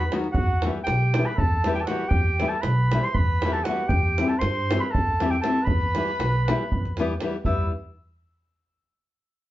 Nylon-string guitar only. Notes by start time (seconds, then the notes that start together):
0.12 D#3 F#3 B3 D#4 F#4
0.65 E3 G3 B3 E4 G4
1.17 E3 G3 B3 E4 G4
1.65 E3 G3 B3 E4 G4
1.89 E3 G3 B3 E4 G4
2.40 E3 G3 B3 E4 G4
2.93 E3 G3 B3 E4 G4
3.45 E3 G3 B3 E4 G4
3.68 E3 G3 B3 E4 G4
4.19 E3 G3 C4 E4 G4
4.71 E3 G3 C4 E4 G4
5.21 E3 G3 C4 E4 G4
5.44 E3 G3 C4 E4 G4
5.95 E3 G3 B3 E4 G4
6.48 E3 G3 B3 E4 G4
6.99 E3 G3 B3 E4 G4
7.22 E3 G3 B3 E4 G4
7.45 G3 B3 E4 G4